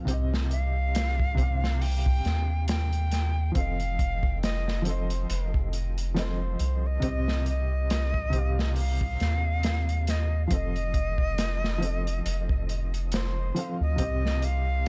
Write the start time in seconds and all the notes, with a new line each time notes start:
0.05 C2 C3 C4, kick, closed hi-hat
0.10 G4 D#5
0.34 snare
0.51 F5, closed hi-hat
0.95 snare, closed hi-hat
1.20 kick
1.35 C3 C4, kick, closed hi-hat
1.40 G4 F5
1.64 snare
1.81 G5, open hi-hat
2.06 kick
2.25 D#2, snare, closed hi-hat
2.68 G5, snare, closed hi-hat
2.93 closed hi-hat
3.11 snare, closed hi-hat
3.52 F3 C4, kick, closed hi-hat
3.56 F1 A4 F5
3.60 D#5
3.80 closed hi-hat
3.99 kick, closed hi-hat
4.23 kick
4.43 D#5, snare, closed hi-hat
4.68 snare
4.82 F3 C4, closed hi-hat
4.87 A4 C5 D#5
5.10 closed hi-hat
5.30 F1, closed hi-hat
5.54 kick
5.73 closed hi-hat
5.98 closed hi-hat
6.14 F3 C4 A4 C5, snare, closed hi-hat
6.19 D#5
6.59 C2, closed hi-hat
6.87 D#5
7.00 C2 C3 C4, kick, closed hi-hat
7.05 G4 D#5
7.28 snare
7.46 D#5, closed hi-hat
7.90 snare, closed hi-hat
8.14 kick
8.30 C3 C4, kick, closed hi-hat
8.36 G4 F5
8.59 snare
8.76 F5, open hi-hat
9.01 kick
9.20 D#2, snare, closed hi-hat
9.63 snare, closed hi-hat
9.89 closed hi-hat
10.07 D#5, snare, closed hi-hat
10.46 F3 F5
10.51 F1 C4 A4 D#5, kick, closed hi-hat
10.56 D#5
10.76 closed hi-hat
10.94 kick, closed hi-hat
11.18 kick
11.38 snare, closed hi-hat
11.64 snare
11.78 F3 C4
11.82 A4, closed hi-hat
11.87 D#5
12.07 closed hi-hat
12.25 F1, closed hi-hat
12.49 kick
12.69 closed hi-hat
12.94 closed hi-hat
13.12 C5, snare, closed hi-hat
13.54 F3 C4 A4, closed hi-hat
13.59 F5
13.81 D2 D#5
13.96 C2 C3 C4, kick, closed hi-hat
14.02 G4 D#5
14.26 snare
14.42 F5, closed hi-hat